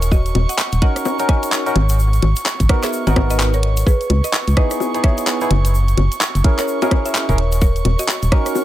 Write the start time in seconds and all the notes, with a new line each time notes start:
Already playing: D#1 C#6
0.02 closed hi-hat, shaker
0.12 F#4 D#5, kick, shaker
0.26 closed hi-hat, shaker
0.35 D#1, closed hi-hat, high bongo
0.49 D#5 F#5, closed hi-hat, shaker
0.58 clap, shaker
0.72 D#1, closed hi-hat, shaker
0.82 C#4 D#4 F#4 A#4 D#5 F#5, kick, closed hi-hat
0.96 cross-stick, closed hi-hat, shaker
1.05 high bongo, shaker
1.19 C#4 D#4 F#4 A#4, closed hi-hat, shaker
1.29 D#5 G#5, kick, cross-stick, closed hi-hat
1.43 closed hi-hat, shaker
1.52 clap, shaker
1.66 C#4 D#4 F#4 A#4, closed hi-hat, shaker
1.76 G#1, closed hi-hat, high bongo
1.89 closed hi-hat, shaker
1.99 shaker
2.13 closed hi-hat, shaker
2.22 G#1, closed hi-hat, high bongo
2.36 closed hi-hat, shaker
2.46 clap, shaker
2.60 G#1, kick, closed hi-hat, shaker
2.69 B3 D#4 F#4 A#4, kick, cross-stick, closed hi-hat
2.83 G#4 E5, cross-stick, clap, closed hi-hat, shaker
2.93 shaker
3.07 G#1 B3 D#4 F#4 A#4 D#5 F#5, closed hi-hat, high bongo, shaker
3.16 G#1, kick, cross-stick, closed hi-hat, high bongo
3.30 B4 D#5, closed hi-hat, shaker
3.40 clap, shaker
3.53 A#4 C#5, closed hi-hat, shaker
3.63 closed hi-hat
3.77 closed hi-hat, shaker
3.86 G#4 B4 C#6, kick, shaker
4.01 closed hi-hat, shaker
4.10 C#2, closed hi-hat, high bongo
4.24 B4 D#5, closed hi-hat, shaker
4.33 clap, shaker
4.47 C#2, closed hi-hat, shaker
4.57 B3 D#4 E4 G#4 B4 D#5, kick, cross-stick, closed hi-hat
4.71 cross-stick, closed hi-hat, shaker
4.80 high bongo, shaker
4.94 B3 D#4 E4 G#4, closed hi-hat, shaker
5.04 C#5 E5, kick, cross-stick, closed hi-hat
5.18 closed hi-hat, shaker
5.26 clap, shaker
5.41 B3 D#4 E4 G#4, closed hi-hat, shaker
5.51 F#1, closed hi-hat, high bongo
5.65 closed hi-hat, shaker
5.74 shaker
5.88 closed hi-hat, shaker
5.97 F#1, closed hi-hat, high bongo
6.12 closed hi-hat, shaker
6.21 clap, shaker
6.35 F#1, closed hi-hat, shaker
6.44 C#4 E4 G#4 A#4, kick, closed hi-hat
6.58 A#4 C#5, cross-stick, clap, closed hi-hat, shaker
6.68 shaker
6.82 C#4 E4 F#4 G#4 A#4 D#5, closed hi-hat, high bongo, shaker
6.91 kick, cross-stick, closed hi-hat, high bongo
7.05 C#5 E5, closed hi-hat, shaker
7.15 clap, shaker
7.29 D#1 C#4 E4 G#4 A#4 C#5, kick, closed hi-hat, shaker
7.38 closed hi-hat
7.52 closed hi-hat, shaker
7.61 A#4 C#5, kick, shaker
7.76 closed hi-hat, shaker
7.85 D#1, closed hi-hat, high bongo
7.99 F#4 D#5, closed hi-hat, shaker
8.08 clap, shaker
8.22 D#1, closed hi-hat, shaker
8.32 C#4 D#4 F#4 A#4 D#5, kick, cross-stick, closed hi-hat
8.46 cross-stick, closed hi-hat, shaker
8.55 high bongo, shaker